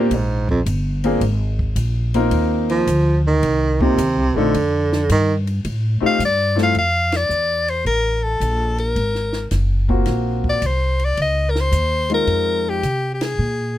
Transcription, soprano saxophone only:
6.06 F5
6.25 D5
6.63 F5
6.79 F5
7.16 D5
7.70 C5
7.87 A#4
8.24 A4
8.80 A#4
10.49 D5
10.66 C5
11.05 D5
11.21 D#5
11.50 A#4
11.60 C5
12.14 A#4
12.69 G4
13.14 G4
13.23 G#4

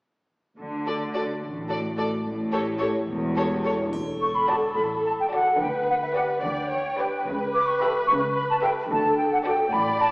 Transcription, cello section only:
0.58 D3
1.41 A2
2.23 A2
3.07 E2
3.92 D3
4.77 A2
5.60 D3
6.43 D3
7.25 C#3
8.08 C#3
8.90 D3
9.71 A2

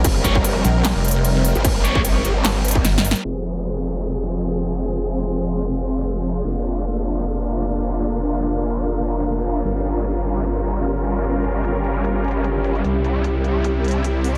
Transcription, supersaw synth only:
Already playing: G3 A#4
0.05 C4
3.25 F3 C4 G#4
6.45 A#3 D4 F4
9.64 G3 C#4 A#4
12.84 C3 E4

